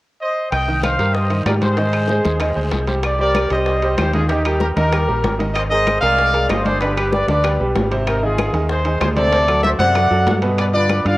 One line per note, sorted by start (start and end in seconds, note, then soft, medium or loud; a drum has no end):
0.22 0.51 C5 medium
0.22 0.50 D#5 medium
0.52 0.96 C2 medium
0.52 0.82 D#5 medium
0.52 0.81 G5 loud
0.52 high bongo medium
0.52 high conga soft
0.52 high timbale medium
0.52 long guiro medium
0.52 claves medium
0.68 0.94 D#3 medium
0.68 0.94 D#4 medium
0.68 0.94 D#5 medium
0.68 high conga soft
0.82 1.13 C5 medium
0.82 1.12 F5 medium
0.82 high bongo medium
0.82 high conga medium
0.82 high timbale medium
0.82 short guiro medium
0.82 claves medium
0.99 1.43 G2 medium
0.99 1.25 G3 medium
0.99 1.25 G4 medium
0.99 1.25 A#4 medium
0.99 high conga soft
0.99 high timbale medium
0.99 short guiro medium
1.14 1.47 C5 medium
1.14 1.46 D#5 medium
1.14 high bongo medium
1.14 high conga soft
1.14 long guiro medium
1.30 1.43 D#3 medium
1.30 1.43 D#4 medium
1.30 1.44 D#5 medium
1.30 high conga soft
1.30 high timbale medium
1.45 2.19 G#2 medium
1.45 1.72 G3 medium
1.45 1.73 G4 medium
1.45 1.73 A#4 medium
1.45 1.55 A#4 medium
1.45 1.53 D5 medium
1.45 high bongo medium
1.45 low bongo medium
1.45 high conga medium
1.45 high timbale medium
1.45 low timbale medium
1.45 short guiro medium
1.45 claves medium
1.61 2.85 G#4 medium
1.61 2.84 C5 medium
1.61 high conga medium
1.61 high timbale medium
1.61 short guiro medium
1.77 2.04 D#3 medium
1.77 2.04 D#4 medium
1.77 2.04 D#5 medium
1.77 high bongo medium
1.77 high conga soft
1.77 high timbale medium
1.77 long guiro medium
1.93 high bongo soft
1.93 high conga soft
1.93 high timbale medium
1.93 claves medium
2.08 2.35 G#3 medium
2.08 2.35 G#4 medium
2.08 2.35 C5 medium
2.08 high bongo medium
2.08 high conga medium
2.08 short guiro medium
2.24 2.54 D#2 medium
2.24 high bongo soft
2.24 high conga medium
2.24 high timbale medium
2.24 short guiro medium
2.40 2.53 D#3 medium
2.40 2.54 D#4 medium
2.40 2.54 D#5 medium
2.40 high bongo medium
2.40 high conga soft
2.40 high timbale medium
2.40 long guiro medium
2.40 claves medium
2.55 2.71 D2 medium
2.55 2.82 G#3 medium
2.55 2.82 G#4 medium
2.55 2.82 C5 medium
2.55 high conga soft
2.72 3.45 C2 medium
2.72 high bongo medium
2.72 low bongo medium
2.72 high conga medium
2.72 high timbale medium
2.72 short guiro medium
2.87 3.01 G3 medium
2.87 3.01 G4 medium
2.87 3.01 C5 medium
2.87 high bongo soft
2.87 high conga medium
2.87 high timbale medium
2.87 short guiro medium
3.03 3.20 G4 medium
3.03 3.19 D5 medium
3.03 high bongo medium
3.03 high conga soft
3.03 high timbale medium
3.03 claves medium
3.19 3.45 G3 medium
3.19 3.46 G4 medium
3.19 3.50 A#4 medium
3.19 3.46 C5 medium
3.19 3.50 D5 medium
3.19 high conga soft
3.35 high bongo medium
3.35 high conga medium
3.35 high timbale medium
3.35 claves medium
3.50 3.95 C2 medium
3.50 3.77 G3 medium
3.50 3.77 G4 medium
3.50 3.77 C5 medium
3.50 3.96 C5 medium
3.50 3.96 D#5 medium
3.50 high conga soft
3.50 high timbale medium
3.66 high bongo medium
3.66 high conga soft
3.82 4.09 G3 medium
3.82 4.09 G4 medium
3.82 4.09 C5 medium
3.82 high conga soft
3.82 high timbale medium
3.98 4.71 D#2 medium
3.98 4.14 G4 medium
3.98 4.13 C5 medium
3.98 high bongo medium
3.98 low bongo medium
3.98 high conga medium
3.98 high timbale loud
3.98 claves medium
4.13 4.27 D#3 medium
4.13 4.28 D#4 medium
4.13 4.30 F4 medium
4.13 4.29 G#4 medium
4.13 4.28 D#5 medium
4.13 high conga medium
4.13 high timbale medium
4.28 4.43 D#3 medium
4.28 4.43 D#4 medium
4.28 4.45 D#4 medium
4.28 4.43 G4 medium
4.28 4.43 D#5 medium
4.28 high bongo medium
4.28 high conga soft
4.28 high timbale medium
4.45 4.72 G3 medium
4.45 4.61 D#4 medium
4.45 4.60 G4 medium
4.45 4.72 G4 medium
4.45 4.72 A#4 medium
4.45 high bongo soft
4.45 high conga soft
4.45 high timbale medium
4.45 claves medium
4.60 4.70 G4 medium
4.60 4.68 A#4 medium
4.60 high bongo medium
4.60 high conga medium
4.76 5.06 D#2 medium
4.76 4.90 D#3 medium
4.76 4.90 D#4 medium
4.76 5.37 G4 medium
4.76 5.36 A#4 medium
4.76 4.91 D#5 medium
4.76 high bongo soft
4.76 high conga medium
4.76 high timbale medium
4.93 5.06 G3 medium
4.93 5.06 G4 medium
4.93 5.06 A#4 medium
4.93 high bongo medium
4.93 high conga soft
4.93 high timbale medium
4.93 claves medium
5.08 5.23 A#1 medium
5.08 5.34 G3 medium
5.08 5.34 G4 medium
5.08 5.34 A#4 medium
5.08 high conga soft
5.24 5.97 G#1 medium
5.24 high bongo medium
5.24 low bongo medium
5.24 high conga medium
5.24 high timbale medium
5.39 5.65 D#3 medium
5.39 5.66 D#4 medium
5.39 5.66 D#5 medium
5.39 high bongo soft
5.39 high conga medium
5.39 high timbale medium
5.54 5.64 C5 medium
5.54 5.62 D#5 loud
5.54 high bongo medium
5.54 high conga soft
5.54 high timbale medium
5.54 claves medium
5.70 5.97 G#3 medium
5.70 5.97 G#4 medium
5.70 5.97 A#4 medium
5.70 6.02 C5 medium
5.70 6.00 D#5 loud
5.70 high conga soft
5.87 high bongo medium
5.87 high conga medium
5.87 high timbale medium
5.87 claves medium
6.01 6.46 C2 medium
6.01 6.28 G#3 medium
6.01 6.28 G#4 medium
6.01 6.29 A#4 medium
6.01 6.47 D5 medium
6.01 6.46 F5 loud
6.01 high conga soft
6.01 high timbale medium
6.18 high bongo medium
6.18 high conga soft
6.33 6.60 G#3 medium
6.33 6.60 G#4 medium
6.33 6.60 A#4 medium
6.33 high conga soft
6.33 high timbale medium
6.49 7.23 G1 medium
6.49 6.64 C5 medium
6.49 6.64 D#5 medium
6.49 high bongo medium
6.49 low bongo medium
6.49 high conga medium
6.49 high timbale medium
6.49 low timbale medium
6.49 claves medium
6.65 6.78 D3 medium
6.65 6.79 D4 medium
6.65 6.82 G#4 medium
6.65 6.81 C5 loud
6.65 6.79 D5 medium
6.65 high conga medium
6.65 high timbale medium
6.81 6.95 D3 medium
6.81 6.95 D4 medium
6.81 6.97 G4 medium
6.81 6.95 B4 medium
6.81 6.95 D5 medium
6.81 high bongo medium
6.81 high conga soft
6.81 high timbale medium
6.97 7.23 G3 medium
6.97 7.23 G4 medium
6.97 7.12 G4 medium
6.97 7.11 B4 medium
6.97 7.23 B4 medium
6.97 high bongo soft
6.97 high conga soft
6.97 high timbale medium
6.97 claves medium
7.12 7.29 B4 medium
7.12 7.27 D5 medium
7.12 high bongo medium
7.12 high conga medium
7.27 7.57 D2 medium
7.27 7.42 D3 medium
7.27 7.42 D4 medium
7.27 7.63 B4 medium
7.27 7.62 D5 medium
7.27 7.42 D5 medium
7.27 high bongo soft
7.27 high conga medium
7.27 high timbale medium
7.44 7.57 G3 medium
7.44 7.57 G4 medium
7.44 7.57 B4 medium
7.44 high bongo medium
7.44 high conga soft
7.44 high timbale medium
7.44 claves medium
7.60 7.74 B1 medium
7.60 7.86 G3 medium
7.60 7.86 G4 medium
7.60 7.86 B4 medium
7.60 high conga soft
7.75 8.49 G#1 medium
7.75 high bongo medium
7.75 low bongo medium
7.75 high conga medium
7.75 high timbale medium
7.75 low timbale medium
7.91 8.17 C3 medium
7.91 8.17 C4 medium
7.91 8.18 C5 medium
7.91 high bongo soft
7.91 high timbale medium
8.07 8.22 D#4 medium
8.07 8.22 A#4 medium
8.07 high bongo medium
8.07 high conga soft
8.07 high timbale medium
8.07 claves medium
8.23 8.49 D#3 medium
8.23 8.49 D#4 medium
8.23 8.55 F4 medium
8.23 8.49 G#4 medium
8.23 8.55 G#4 medium
8.23 high conga soft
8.38 high bongo medium
8.38 high conga medium
8.38 high timbale medium
8.38 claves medium
8.53 8.98 D#2 medium
8.53 8.80 D#3 medium
8.53 8.80 D#4 medium
8.53 8.80 G#4 medium
8.53 high conga soft
8.53 high timbale medium
8.70 9.00 G#4 medium
8.70 8.99 C5 medium
8.70 high bongo medium
8.70 high conga soft
8.85 9.12 D#3 medium
8.85 9.12 D#4 medium
8.85 9.12 G#4 medium
8.85 high conga soft
8.85 high timbale medium
9.01 9.74 D2 medium
9.01 9.09 G#4 medium
9.01 9.08 C5 medium
9.01 high bongo medium
9.01 low bongo medium
9.01 high conga medium
9.01 high timbale medium
9.01 low timbale medium
9.01 claves medium
9.16 9.30 C3 medium
9.16 9.30 C4 medium
9.16 9.62 A4 medium
9.16 9.30 C5 medium
9.16 9.61 D5 loud
9.16 high conga medium
9.16 high timbale medium
9.32 9.45 C3 medium
9.32 9.45 C4 medium
9.32 9.46 C5 medium
9.32 high bongo medium
9.32 high conga soft
9.32 high timbale medium
9.48 9.74 F#3 medium
9.48 9.74 F#4 medium
9.48 9.74 A4 medium
9.48 high bongo soft
9.48 high conga soft
9.48 high timbale medium
9.48 claves medium
9.63 9.73 C5 medium
9.63 9.71 E5 medium
9.63 high bongo medium
9.63 high conga medium
9.79 10.09 F#2 medium
9.79 9.92 C3 medium
9.79 9.93 C4 medium
9.79 9.93 C5 medium
9.79 10.40 D5 medium
9.79 10.39 F#5 loud
9.79 high conga loud
9.79 high timbale medium
9.95 10.08 F#3 medium
9.95 10.09 F#4 medium
9.95 10.09 A4 medium
9.95 high bongo medium
9.95 high conga soft
9.95 high timbale medium
9.95 claves medium
10.10 10.25 F#2 medium
10.10 10.37 F#3 medium
10.10 10.37 F#4 medium
10.10 10.37 A4 medium
10.10 high conga soft
10.26 11.00 G2 medium
10.26 high bongo medium
10.26 low bongo medium
10.26 high conga medium
10.26 high timbale medium
10.26 low timbale medium
10.42 10.68 B2 medium
10.42 10.68 B3 medium
10.42 10.68 B4 medium
10.42 high bongo soft
10.42 high timbale medium
10.58 10.67 B4 medium
10.58 10.65 D5 medium
10.58 high bongo medium
10.58 high conga soft
10.58 high timbale medium
10.58 claves medium
10.73 11.00 D3 medium
10.73 11.00 D4 medium
10.73 11.00 F4 medium
10.73 11.05 B4 medium
10.73 11.03 D5 loud
10.73 high conga soft
10.89 high bongo medium
10.89 high conga medium
10.89 high timbale medium
10.89 claves medium
11.05 11.18 G2 medium
11.05 11.18 D3 medium
11.05 11.18 D4 medium
11.05 11.18 F4 medium
11.05 11.18 D5 medium
11.05 11.18 F5 loud
11.05 high conga soft
11.05 high timbale medium